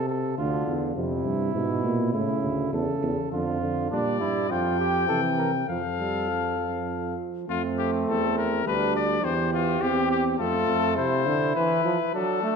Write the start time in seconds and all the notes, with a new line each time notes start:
Already playing: C3
0.09 A4
0.38 D2 D3 F4
0.67 E2
0.96 F2 C3 E4
1.25 G2
1.55 G#2 B2
1.84 A#2
2.13 A2 C#3 E4
2.43 D2
2.73 E2 C#3 A4
3.03 E2
3.32 F2 D3 F4
3.62 D3
3.91 A#2 G3 D4 D5
4.20 G2 E4
4.50 F2 F3 F4 G5
4.80 G4
5.08 C3 E3 A4
5.38 A#4
5.67 F2 F3 A4 F5
5.99 G3
6.29 F3
6.59 F3
7.48 F2 A3 C4 F4
7.78 G4
8.07 E2 A4
8.38 A#4
8.65 D2 G3 D4 B4
8.96 D5
9.24 E2 E3 G4 C5
9.53 F4
9.81 E2 C4 G4
10.11 G4
10.39 F2 A3 F4 A4
10.68 F2
10.97 C3 E4 C5
11.27 D3
11.55 E3 B4
11.85 F3
12.14 F#3 D4 A4
12.43 A3